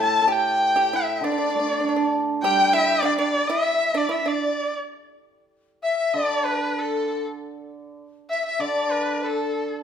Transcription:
Already playing: A2 A5
0.00 A4 A5
0.22 A4 A5
0.28 G4
0.32 G5
0.76 G4
0.93 E4 E5
1.16 E5
1.21 D3 D4 D5
1.32 D4
1.38 D4
1.44 D4
1.50 D4
1.55 A3
1.59 D4
1.67 D4
1.73 D4
1.80 D4
1.85 D4
1.89 D4
1.96 D4
2.43 G3 G4 G5
2.73 E4 E5
3.01 D4 D5
3.06 D5
3.18 D4 D5
3.48 E4 E5
3.94 D4 D5
4.09 E4 E5
4.26 D4 D5
5.83 E5
5.97 E5
6.14 D3 D5
6.45 B4
6.79 A4
8.30 E5
8.45 E5
8.59 D3 D5
8.91 B4
9.23 A4

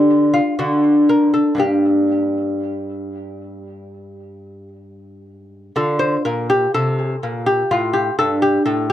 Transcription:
Already playing: D3 D4 G4
0.34 F4
0.59 D3 D4 F#4
1.09 A#4
1.34 A4
1.55 G2 A#3 D4
1.59 G4
5.76 D3 F4 A4
5.99 C5
6.25 A#2 A#4
6.50 G4
6.74 C3 A4
7.23 A#2
7.46 G4
7.71 A2 F4
7.93 G4
8.19 G2 A4
8.42 G4
8.66 A2 A4

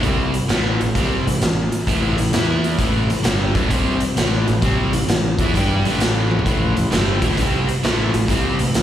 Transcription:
0.03 C2 C3 G3 C4, kick, closed hi-hat
0.34 closed hi-hat
0.49 A1 A2 E3 A3, snare, closed hi-hat
0.80 A1 A2 E3, closed hi-hat
0.95 C2 C3 G3 C4, kick, closed hi-hat
1.26 A1 A2 E3, closed hi-hat
1.41 A1 A2 E3, snare, closed hi-hat
1.72 closed hi-hat
1.87 A1 A2 E3 A3, kick, closed hi-hat
2.18 A1 A2 E3, closed hi-hat
2.33 E2 E3 B3 E4, snare, closed hi-hat
2.64 closed hi-hat
2.78 A1 A2 E3 A3, kick, closed hi-hat
3.10 A1 A2 E3, closed hi-hat
3.23 G1 G2 D3 G3, snare, closed hi-hat
3.54 A1 A2 E3 A3, kick, closed hi-hat
3.70 C2 C3 G3 C4, kick, closed hi-hat
4.00 closed hi-hat
4.16 A1 A2 E3 A3, snare, closed hi-hat
4.47 A1 A2 E3, closed hi-hat
4.62 C2 C3 G3 C4, kick, closed hi-hat
4.93 A1 A2 E3, closed hi-hat
5.08 A1 A2 E3, snare, closed hi-hat
5.39 E2 E3 B3 E4, kick, closed hi-hat
5.54 G2 G3 D4 G4, kick, closed hi-hat
5.84 A1 A2 E3 A3, closed hi-hat
6.00 snare, closed hi-hat
6.31 high tom
6.39 floor tom
6.46 A1 A2 E3 A3, kick, closed hi-hat
6.76 A1 A2 E3, closed hi-hat
6.91 G1 G2 D3 G3, snare, closed hi-hat
7.22 A1 A2 E3 A3, kick, closed hi-hat
7.31 snare
7.37 C2 C3 G3 C4, kick, closed hi-hat
7.68 closed hi-hat
7.84 A1 A2 E3 A3, snare, closed hi-hat
8.14 A1 A2 E3, closed hi-hat
8.28 C2 C3 G3 C4, kick, closed hi-hat
8.59 A1 A2 E3, closed hi-hat
8.74 A1 A2 E3, snare, closed hi-hat

